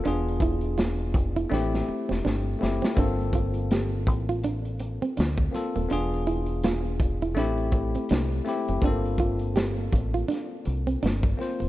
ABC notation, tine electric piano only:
X:1
M:4/4
L:1/8
Q:"Swing 16ths" 1/4=82
K:Gdor
V:1 name="Tine electric piano"
[=B,DF^G]4 [A,CE=G]3 [A,CEG] | [B,CFA]4 z3 [B,CFA] | [=B,DF^G]4 [A,CE=G]3 [A,CEG] | [A,B,CFA]4 z3 [B,CFc] |]